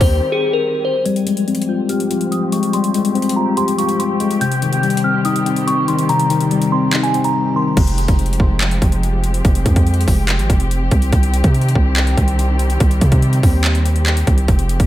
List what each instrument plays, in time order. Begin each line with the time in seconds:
Already playing: string section D#3 G3 C4 G4
0.01 808-style bass D#2, synth bell C5, kick, open hi-hat
0.32 synth bell G#4
0.53 synth bell A#4
0.85 synth bell C5
1.05 string section F3 C4 G4, tine electric piano G3, synth bell G#6, closed hi-hat
1.16 closed hi-hat
1.27 tine electric piano G#3, closed hi-hat
1.37 closed hi-hat
1.48 tine electric piano C4, closed hi-hat
1.55 closed hi-hat
1.62 closed hi-hat
1.69 tine electric piano F4, synth bell G6
1.89 tine electric piano G4, synth bell F6, closed hi-hat
2.00 closed hi-hat
2.10 tine electric piano F4, closed hi-hat
2.21 closed hi-hat
2.32 synth bell D#6, closed hi-hat
2.52 tine electric piano G#3, synth bell C#6, closed hi-hat
2.63 closed hi-hat
2.73 tine electric piano G3, synth bell C6, closed hi-hat
2.84 closed hi-hat
2.94 tine electric piano G#3, closed hi-hat
3.05 closed hi-hat
3.15 tine electric piano C4, closed hi-hat
3.22 closed hi-hat
3.29 closed hi-hat
3.36 tine electric piano F4, synth bell A#5
3.57 tine electric piano G4, synth bell C6, closed hi-hat
3.68 closed hi-hat
3.78 tine electric piano F4, synth bell C#6, closed hi-hat
3.89 closed hi-hat
3.99 synth bell C6, closed hi-hat
4.20 tine electric piano G#3, closed hi-hat
4.31 closed hi-hat
4.41 tine electric piano C3, string section D#3 G3, synth bell G6, closed hi-hat
4.52 closed hi-hat
4.62 tine electric piano D#3, closed hi-hat
4.73 closed hi-hat
4.83 tine electric piano G3, closed hi-hat
4.90 closed hi-hat
4.97 closed hi-hat
5.04 tine electric piano C4, synth bell F6
5.25 tine electric piano D#4, synth bell D#6, closed hi-hat
5.36 closed hi-hat
5.46 tine electric piano C4, closed hi-hat
5.56 closed hi-hat
5.67 synth bell C#6, closed hi-hat
5.88 tine electric piano D#3, synth bell C6, closed hi-hat
5.99 closed hi-hat
6.09 tine electric piano C3, synth bell A#5, closed hi-hat
6.20 closed hi-hat
6.30 tine electric piano D#3, closed hi-hat
6.41 closed hi-hat
6.51 tine electric piano G3, closed hi-hat
6.62 closed hi-hat
6.72 tine electric piano C4, synth bell C6
6.93 tine electric piano D#4, clap, closed hi-hat
7.03 synth bell G#5, closed hi-hat
7.14 tine electric piano C4, closed hi-hat
7.24 synth bell A#5, closed hi-hat
7.56 tine electric piano D#3, synth bell C6
7.77 808-style bass F1, string section F3 G#3 C4 G4, kick, closed hi-hat, crash
7.87 closed hi-hat
7.98 closed hi-hat
8.08 808-style bass F1, kick, closed hi-hat
8.19 closed hi-hat
8.26 closed hi-hat
8.33 closed hi-hat
8.40 808-style bass F1, kick
8.60 clap, closed hi-hat
8.71 closed hi-hat
8.82 808-style bass F1, kick, closed hi-hat
8.92 closed hi-hat
9.03 closed hi-hat
9.24 closed hi-hat
9.34 closed hi-hat
9.45 808-style bass F1, kick, closed hi-hat
9.55 closed hi-hat
9.66 808-style bass F2, kick, closed hi-hat
9.76 kick, closed hi-hat
9.87 closed hi-hat
9.94 closed hi-hat
10.01 closed hi-hat
10.08 808-style bass F1, kick, open hi-hat
10.28 clap, closed hi-hat
10.39 808-style bass G#1, closed hi-hat
10.50 808-style bass F1, kick, closed hi-hat
10.60 closed hi-hat
10.71 closed hi-hat
10.91 808-style bass C2, kick, closed hi-hat
11.02 closed hi-hat
11.12 808-style bass C2, string section D#3 G3, kick, closed hi-hat
11.23 closed hi-hat
11.34 closed hi-hat
11.44 808-style bass C3, kick, closed hi-hat
11.54 closed hi-hat
11.61 closed hi-hat
11.69 closed hi-hat
11.75 808-style bass C2, kick
11.96 clap, closed hi-hat
12.07 closed hi-hat
12.17 808-style bass C2, kick, closed hi-hat
12.28 closed hi-hat
12.39 closed hi-hat
12.59 closed hi-hat
12.70 closed hi-hat
12.80 808-style bass C2, kick, closed hi-hat
12.91 closed hi-hat
13.01 808-style bass C3, kick, closed hi-hat
13.12 kick, closed hi-hat
13.22 closed hi-hat
13.33 closed hi-hat
13.43 808-style bass D#2, kick, open hi-hat
13.64 clap, closed hi-hat
13.75 closed hi-hat
13.86 closed hi-hat
13.96 closed hi-hat
14.06 clap, closed hi-hat
14.17 closed hi-hat
14.27 808-style bass C2, kick, closed hi-hat
14.38 closed hi-hat
14.48 808-style bass F1, string section F3 G#3, kick, closed hi-hat
14.59 closed hi-hat
14.69 closed hi-hat
14.80 808-style bass F1, kick, closed hi-hat